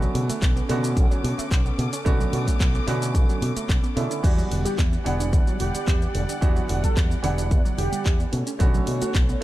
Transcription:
Already playing: D3 A3 B3 C#4 F#4 A4 D6
0.02 F#3, closed hi-hat, shaker
0.15 B2 C#3, open hi-hat
0.29 A3, muted fingered electric bass stroke, closed hi-hat, shaker
0.42 B1 B3, kick, clap, closed hi-hat, shaker
0.56 B3, closed hi-hat, shaker
0.69 B2 C#3 D3 A3 B3 C#4 F#4, open hi-hat
0.83 C#4, closed hi-hat, shaker
0.97 B1 C#3, kick, closed hi-hat, shaker
1.11 F#3, closed hi-hat, shaker
1.24 B2 C#3, open hi-hat
1.38 A3, muted fingered electric bass stroke, closed hi-hat, shaker
1.51 B1 B3, kick, clap, closed hi-hat, shaker
1.66 B3, closed hi-hat, shaker
1.78 B2 C#3, open hi-hat
1.93 C#4, closed hi-hat, shaker
2.05 B1 C#3 D3 A3 B3 C#4 F#4, kick, closed hi-hat, shaker
2.20 F#3, closed hi-hat, shaker
2.33 B2 C#3, open hi-hat
2.47 A3, muted fingered electric bass stroke, kick, closed hi-hat, shaker
2.60 B1 B3, kick, clap, closed hi-hat, shaker
2.75 B3, closed hi-hat, shaker
2.87 B2 C#3 D3 A3 B3 C#4 F#4, open hi-hat
3.02 C#4, closed hi-hat, shaker
3.15 B1 C#3, kick, closed hi-hat, shaker
3.29 F#3, closed hi-hat, shaker
3.42 B2 C#3, open hi-hat
3.56 A3, muted fingered electric bass stroke, closed hi-hat, shaker
3.69 B1 B3, kick, clap, closed hi-hat, shaker
3.84 B3, closed hi-hat, shaker
3.96 B2 C#3 D3 A3 B3 C#4 E4, open hi-hat
4.11 C#4, closed hi-hat, shaker
4.23 E2 D3 E3 G3 B3 D4 F#4 D5 F#5, kick, closed hi-hat, crash, shaker
4.38 F#3, closed hi-hat, shaker
4.51 E1 D3, open hi-hat
4.65 G3 G4, muted fingered electric bass stroke, closed hi-hat, shaker
4.78 E2 B3, kick, clap, closed hi-hat, shaker
4.92 B3, closed hi-hat, shaker
5.04 E1 D3 E3 G3 B3 D4 F#5, open hi-hat
5.20 D4, closed hi-hat, shaker
5.33 E2 D3, kick, closed hi-hat, shaker
5.47 F#3, closed hi-hat, shaker
5.60 E1 D3 G4, open hi-hat
5.75 G3 G4, muted fingered electric bass stroke, closed hi-hat, shaker
5.88 E2 B3, kick, clap, closed hi-hat, shaker
6.02 B3, closed hi-hat, shaker
6.15 E1 D3, open hi-hat
6.29 D4, closed hi-hat, shaker
6.41 E2 D3 E3 G3 B3 D4 F#4, kick, closed hi-hat, shaker
6.56 F#3, closed hi-hat, shaker
6.69 E1 D3, open hi-hat
6.83 G3 A4, muted fingered electric bass stroke, kick, closed hi-hat, shaker
6.96 E2 B3, kick, clap, closed hi-hat, shaker
7.11 B3, closed hi-hat, shaker
7.22 E1 D3 E3 G3 B3 D4 F#5, open hi-hat
7.38 D4, closed hi-hat, shaker
7.51 E2 D3, kick, closed hi-hat, shaker
7.65 F#3, closed hi-hat, shaker
7.78 E1 D3 G4, open hi-hat
7.92 G3, muted fingered electric bass stroke, closed hi-hat, shaker
8.05 E2 B3, kick, clap, closed hi-hat, shaker
8.20 B3, closed hi-hat, shaker
8.32 B2 C#3 D3 A3 C#5, open hi-hat
8.47 C#4, closed hi-hat, shaker
8.59 B1 C#3 D3 A3 B3 C#4 F#4, kick, closed hi-hat, shaker
8.74 F#3, closed hi-hat, shaker
8.87 B2 C#3, open hi-hat
9.02 A3 F#4, muted fingered electric bass stroke, closed hi-hat, shaker
9.15 B1 B3, kick, clap, closed hi-hat, shaker
9.29 B3, closed hi-hat, shaker

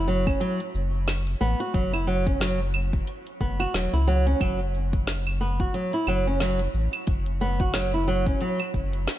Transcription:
Already playing: F#1
0.08 F#3, shaker
0.27 C#4, kick, claves, shaker
0.40 F#3, closed hi-hat, shaker
0.60 closed hi-hat, shaker
0.74 F#1, shaker
0.94 shaker
1.08 snare, closed hi-hat, claves, shaker
1.27 closed hi-hat, shaker
1.41 A1 B3, shaker
1.60 F#4, closed hi-hat, shaker
1.74 F#1 F#3, kick, closed hi-hat, shaker
1.93 E4, claves, shaker
2.07 F#3, shaker
2.27 C#4, kick, closed hi-hat, shaker
2.40 F#3, snare, closed hi-hat, shaker
2.61 shaker
2.74 claves, shaker
2.93 kick, shaker
3.07 closed hi-hat, shaker
3.27 closed hi-hat, shaker
3.41 F#1 B3, kick, shaker
3.60 F#4, claves, shaker
3.74 E1 F#3, snare, closed hi-hat, shaker
3.93 C#2 E4, closed hi-hat, shaker
4.07 F#3, shaker
4.27 C#4, closed hi-hat, shaker
4.41 F#1 F#3, kick, closed hi-hat, claves, shaker
4.60 shaker
4.74 shaker
4.93 kick, closed hi-hat, shaker
5.07 snare, closed hi-hat, shaker
5.27 claves, shaker
5.41 B3, shaker
5.60 F#4, kick, shaker
5.74 F#3, closed hi-hat, shaker
5.93 E4, closed hi-hat, shaker
6.07 F#1 F#3, claves, shaker
6.27 C#4, shaker
6.40 F#3, snare, closed hi-hat, shaker
6.59 closed hi-hat, shaker
6.74 A1, shaker
6.93 closed hi-hat, claves, shaker
7.07 F#1, kick, closed hi-hat, shaker
7.26 closed hi-hat, shaker
7.41 B3, shaker
7.60 F#4, kick, closed hi-hat, shaker
7.74 F#3, snare, closed hi-hat, claves, shaker
7.93 E4, shaker
8.07 F#3, shaker
8.27 C#4, kick, closed hi-hat, shaker
8.41 F#3, closed hi-hat, shaker
8.60 closed hi-hat, claves, shaker
8.74 F#1, kick, shaker
8.93 closed hi-hat, shaker
9.08 snare, closed hi-hat, shaker

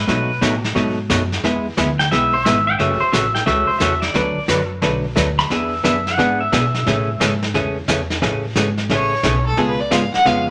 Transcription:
Already playing: B4
0.07 B2 F#3 A3 D#4 F#4, brush sweep, kick, snare
0.41 A2 B2 F#3 A3 D#4 F#4, kick, snare, hi-hat pedal
0.64 snare
0.75 G#2 B2 F#3 A3 D#4 F#4, brush sweep, kick, snare
1.10 F#2 B2 F#3 A3 D#4 F#4, kick, snare, hi-hat pedal
1.32 snare
1.44 E2 E3 G#3 B3 E4 G#4, brush sweep, kick, snare
1.77 D2 E3 G#3 B3 E4 G#4, kick, snare, hi-hat pedal
1.99 G5, snare
2.11 B1 E3 G#3 B3 E4 G#4 E5, brush sweep, kick, snare
2.33 C5
2.45 G#1 E3 G#3 B3 E4 G#4 E5, kick, snare, hi-hat pedal
2.67 G5
2.79 F#1 C#3 E3 A3 C#4 F#4 E5, brush sweep, kick, snare
3.00 C5, muted upright bass stroke
3.12 A1 C#3 E3 A3 C#4 F#4 E5, kick, snare, hi-hat pedal
3.35 G5, snare
3.46 C#2 C#3 E3 A3 C#4 F#4 E5, brush sweep, kick, snare
3.67 C5, muted upright bass stroke
3.79 E2 C#3 E3 A3 C#4 F#4 E5, kick, snare, hi-hat pedal
4.02 D5, snare
4.14 D2 D3 F#3 A3 D4 F#4 B4, brush sweep, kick, snare
4.36 muted upright bass stroke
4.48 F#2 D3 F#3 A3 D4 F#4 B4, kick, snare, hi-hat pedal
4.82 B1 D3 F#3 A3 D4 F#4 B4, brush sweep, kick, snare
5.16 D2 D3 F#3 A3 D4 F#4 B4, kick, snare, hi-hat pedal
5.39 B5, snare
5.50 E2 E3 B3 D4 G#4 E5, brush sweep, kick, snare
5.83 F#2 E3 B3 D4 G#4 E5, kick, snare, hi-hat pedal
6.07 F#5, snare
6.18 G#2 E3 B3 D4 G#4, brush sweep, kick, snare
6.41 E5
6.52 B2 E3 B3 D4 G#4, kick, snare, hi-hat pedal
6.74 snare
6.86 A2 C#3 E3 A3 C#4 G#4, brush sweep, kick, snare
7.20 G#2 C#3 E3 A3 C#4 G#4, kick, snare, hi-hat pedal
7.43 snare
7.54 E2 C#3 E3 A3 C#4 G#4, brush sweep, kick, snare
7.88 E2 C#3 E3 A3 C#4 G#4, kick, snare, hi-hat pedal
8.10 snare
8.22 A1 C#3 E3 A3 C#4 G#4, brush sweep, kick, snare
8.56 G#1 C#3 E3 A3 C#4 G#4, kick, snare, hi-hat pedal
8.78 snare
8.89 A1 C#3 E3 A3 C#4 G#4 C#5, brush sweep, kick, snare
9.23 B1 C#3 E3 A3 C#4 G#4, kick, snare, hi-hat pedal
9.46 A4
9.57 C#2 C#3 G#3 B3 F4 G#4, brush sweep, kick, snare
9.69 B4
9.80 D5
9.91 G#2 C#3 G#3 B3 F4 G#4 F5, kick, snare, hi-hat pedal
10.13 F#5, muted upright bass stroke, snare
10.25 F2 C#3 G#3 B3 F4 G#4 F5, brush sweep, kick, snare

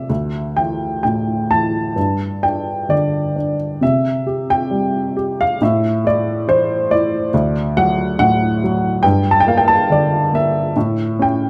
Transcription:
Already playing: C3 A3 D5 E5 F5
0.09 D2
0.57 E3 G5
1.03 A2 G5
1.51 E3 A5
1.96 G2
2.43 D4 G5
2.89 D3 D5
3.36 D4
3.81 C3 E5
4.27 G4
4.50 G5
4.71 G3
5.17 G4
5.41 F5
5.62 A2 E5
6.04 E4 D5
6.48 E3 C5
6.91 E4 D5
7.34 D2
7.77 F#3 F#5
8.19 A2 F#5
8.64 F#3
9.03 G2 G5
9.31 A5
9.40 G5
9.47 A#3 F5
9.58 G5
9.68 A5
9.90 D3 D5
10.33 A#3 E5
10.76 A2
11.19 C#4 G5

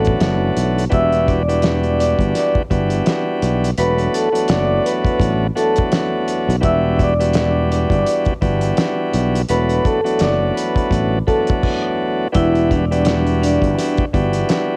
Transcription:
Already playing: A1 E2 F#3 A3 B3 D4 F#4
0.05 kick, closed hi-hat
0.20 F#1, snare, closed hi-hat
0.57 B1, closed hi-hat
0.78 closed hi-hat
0.90 E1 E3 G3 B3 D4 F#4 E5 E6, kick, closed hi-hat
1.12 closed hi-hat
1.28 D5 D6, kick, closed hi-hat
1.48 E3 G3 B3 D4 F#4, closed hi-hat
1.62 snare, closed hi-hat
1.84 closed hi-hat
1.99 D5 D6, closed hi-hat
2.19 G1, kick, closed hi-hat
2.35 snare, closed hi-hat
2.55 kick
2.70 G1 E3 G3 B3 D4 F#4, kick, closed hi-hat
2.90 closed hi-hat
3.06 snare, closed hi-hat
3.42 B1, closed hi-hat
3.64 closed hi-hat
3.77 E1 E2 F#3 A3 B3 D4 F#4 B4 B5, closed hi-hat
3.98 closed hi-hat
4.14 A4 A5, closed hi-hat
4.32 E2 F#3 A3 B3 D4 F#4, closed hi-hat
4.48 F#1 D5 D6, snare, closed hi-hat
4.84 B4 B5, closed hi-hat
5.04 kick, closed hi-hat
5.19 A1, kick, closed hi-hat
5.55 E2 F#3 A3 B3 D4 F#4 A4 A5, closed hi-hat
5.76 kick, closed hi-hat
5.92 snare, closed hi-hat
6.28 closed hi-hat
6.49 B1, closed hi-hat
6.60 E1 E3 G3 B3 D4 F#4 E5, kick, closed hi-hat
6.64 E6
6.99 D5 D6, kick, closed hi-hat
7.20 E3 G3 B3 D4 F#4, closed hi-hat
7.33 snare, closed hi-hat
7.71 D5 D6, closed hi-hat
7.90 G1, kick, closed hi-hat
8.07 closed hi-hat
8.25 kick, closed hi-hat
8.41 G1 E3 G3 B3 D4 F#4, kick, closed hi-hat
8.61 closed hi-hat
8.77 snare, closed hi-hat
9.13 B1, closed hi-hat
9.35 closed hi-hat
9.48 E1 E2 F#3 A3 B3 D4 F#4 B4 B5, closed hi-hat
9.69 closed hi-hat
9.85 A4 A5, kick, closed hi-hat
10.04 E2 F#3 A3 B3 D4 F#4, closed hi-hat
10.19 F#1 D5 D6, snare, closed hi-hat
10.55 B4 B5, closed hi-hat
10.76 kick, closed hi-hat
10.91 A1, kick, closed hi-hat
11.27 E2 F#3 A3 B3 D4 F#4 A4 A5, kick, closed hi-hat
11.47 kick, closed hi-hat
11.63 kick, crash
12.32 E1 E3 G3 B3 D4 E4 F#4, kick, closed hi-hat
12.36 E5
12.55 closed hi-hat
12.71 D4 D5, kick, closed hi-hat
12.91 E3 G3 B3 D4 F#4, closed hi-hat
13.05 snare, closed hi-hat
13.27 closed hi-hat
13.42 D4 D5, closed hi-hat
13.62 G1, kick, closed hi-hat
13.78 snare, closed hi-hat
13.97 kick, closed hi-hat
14.13 G1 E3 G3 B3 D4 F#4, kick, closed hi-hat
14.33 closed hi-hat
14.49 snare, closed hi-hat

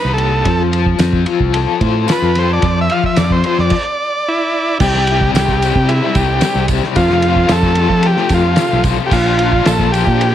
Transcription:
Already playing: A#3 D#4 G4 B4 D#5
0.05 C2
0.14 G4 A4
0.18 ride
0.45 F2 F3, kick, ride
0.72 F4, ride
0.86 kick
0.99 F2 C4, snare, ride, tambourine
1.13 kick
1.26 F4, ride
1.40 C2, kick
1.53 A4, ride
1.81 A2 C5, kick, ride
2.08 F4, snare, ride, tambourine
2.12 B4
2.22 F2
2.35 A4 C5, snare, ride
2.53 D5
2.62 F2 F3, kick, ride
2.81 E5
2.90 F4 F5, ride
3.04 E5, kick
3.16 F2 C4 D5, snare, ride, tambourine
3.31 C5, kick
3.44 F4 C5, ride
3.58 F2 D5, snare
3.70 kick, crash
4.28 E4
4.80 C2 C3 G3 C4 E4 G4, kick, crash, tambourine
4.95 snare
5.07 C3 G3 C4, ride
5.11 E4
5.21 C4 E4, kick
5.25 G3
5.34 C2 C3 G3 C4 G4, snare, ride, tambourine
5.38 E4
5.49 kick, snare
5.62 C3 G3 C4 E4, ride, tambourine
5.75 C3 G3 C4 E4, kick
5.89 E4, ride
6.03 G3 C4 E4
6.15 C2 G4, kick, ride, tambourine
6.29 C4 E4
6.33 G3
6.41 C3 G3, snare, ride, tambourine
6.45 C4 E4
6.55 C2
6.68 C3 G3 C4, kick, ride, tambourine
6.73 E4
6.84 G3 C4 E4, snare
6.96 F2 C3 F3 A3 C4 F4, kick, ride, tambourine
7.10 snare
7.22 F3 A3 C4, ride
7.27 F4
7.36 F3 A3 C4 F4, kick
7.49 F2 C3 F3 A3 C4 F4 A4, snare, ride, tambourine
7.63 kick
7.75 F3 A3 C4, ride
7.80 F4
7.89 F3 A3 C4 F4, kick
8.03 G4, ride
8.15 A3 C4 F4, snare
8.19 F3
8.29 F2, kick, snare, ride, tambourine
8.34 F4
8.44 F3 A3 C4 F4
8.56 F2 C3 F3 A3 C4 F4, snare, ride, tambourine
8.73 B1
8.83 F3 A3 C4 F4, kick, ride, tambourine
8.98 F3 A3 C4 F4
9.06 G4
9.11 A#1 A#2 F3 A#3 D4 F4, kick, tambourine, crash
9.39 F3 A#3 D4 F4, ride
9.52 A#3 D4 F4, kick
9.65 A#1 A#2 F3 A#3 D4 F4 A4, snare, ride, tambourine
9.80 kick
9.92 F3 A#3 D4 F4 G4, ride, tambourine
10.07 A#2 A#3 D4 F4, kick
10.21 ride

